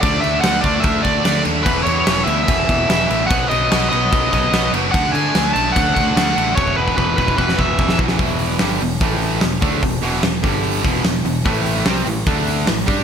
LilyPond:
<<
  \new Staff \with { instrumentName = "Lead electric guitar" } { \time 4/4 \key d \lydian \tempo 4 = 147 d''8 e''8 fis''8 d''8 e''8 d''4 r8 | b'8 cis''4 e''8 e''2 | fis''8 dis''4 dis''4 dis''4 r8 | fis''8 gis''4 a''8 fis''8 fis''4. |
cis''8 b'8 b'8 b'8 b'8 e''4 r8 | r1 | r1 | r1 | }
  \new Staff \with { instrumentName = "Distorted electric guitar" } { \clef bass \time 4/4 \key d \lydian <d a d'>8 <d a d'>8 <d a d'>8 <d a d'>8 <d a d'>8 <d a d'>8 <d a d'>8 <d a d'>8 | <e, b, e>8 <e, b, e>8 <e, b, e>8 <e, b, e>8 <e, b, e>8 <e, b, e>8 <e, b, e>8 <e, b, e>8 | <b, fis b>8 <b, fis b>8 <b, fis b>8 <b, fis b>8 <b, fis b>8 <b, fis b>8 <b, fis b>8 <b, fis b>8 | <d a d'>8 <d a d'>8 <d a d'>8 <d a d'>8 <d a d'>8 <d a d'>8 <d a d'>8 <d a d'>8 |
<e, b, e>8 <e, b, e>8 <e, b, e>8 <e, b, e>8 <e, b, e>8 <e, b, e>8 <e, b, e>8 <e, b, e>8 | <e, b, e>4 <g, d g>8 <e, b,>8 <a, e a>4 <e, b,>8 <d a d'>8 | <e, b,>8 <e, b, e>8 <e, b,>8 <g, d g>4 <e, b, e>8 <e, b,>8 <e, b,>8 | <a, e a>4 <c g c'>8 <a, e>8 <d a d'>4 <a, e>8 <g d' g'>8 | }
  \new Staff \with { instrumentName = "Picked electric bass" } { \clef bass \time 4/4 \key d \lydian d,8 d,8 d,8 d,8 d,8 d,8 d,8 dis,8 | e,,8 e,8 e,,8 d,8 e,,8 e,,8 e,,8 a,,8 | b,,8 b,,8 b,,8 b,,8 b,,8 b,,8 b,,8 fis,,8 | d,8 d8 d,8 b,,8 d,8 d,8 d,8 a,,8 |
e,,8 e,,8 e,,8 e,,8 e,,8 e,,8 e,,8 b,,8 | e,,4 g,,8 e,,8 a,,4 e,,8 d,8 | e,,8 e,,8 e,,8 g,,4 e,,8 e,,8 e,,8 | a,,4 c,8 a,,8 d,4 a,,8 g,8 | }
  \new DrumStaff \with { instrumentName = "Drums" } \drummode { \time 4/4 <cymc bd>8 cymc8 <cymc sn>8 <cymc bd>8 <cymc bd>8 <cymc bd>8 <cymc sn>8 cymc8 | <cymc bd>8 cymc8 <cymc sn>8 cymc8 <cymc bd>8 <cymc bd>8 <cymc sn>8 cymc8 | <cymc bd>8 cymc8 <cymc sn>8 cymc8 <cymc bd>8 <cymc bd>8 <cymc sn>8 cymc8 | <cymc bd>8 cymc8 <cymc sn>8 cymc8 <cymc bd>8 <cymc bd>8 <cymc sn>8 cymc8 |
bd16 bd8 bd16 bd8 bd16 bd16 bd16 sn16 bd8 bd16 sn16 bd16 sn16 | <hho bd>8 hho8 <hho sn>16 sn16 hho8 <hho bd>8 hho8 <hho sn>8 <hho bd>8 | <hho bd>8 hho16 sn16 <hho sn>8 <hho bd>8 hho8 <hho bd>8 <hho sn>8 hho8 | <hho bd>8 hho16 sn16 <hho sn>16 sn16 hho8 <hho bd>8 hho8 <hho sn>8 <hho bd>8 | }
>>